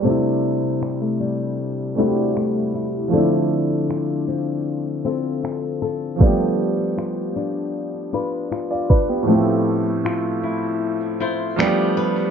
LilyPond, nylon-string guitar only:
\new Staff \with { instrumentName = "Nylon-string guitar" } { \time 4/4 \key c \major \tempo 4 = 78 c4 g16 a16 g4 <g a e'>8 a8 e'8 | d4 f'8 c'4 <c' f' a'>8 f'8 a'8 | g4 f'8 d'4 <d' f' b'>8 f'8 b'8 | a4 f'8 e'4 <e' f' c''>8 g8 b'8 | }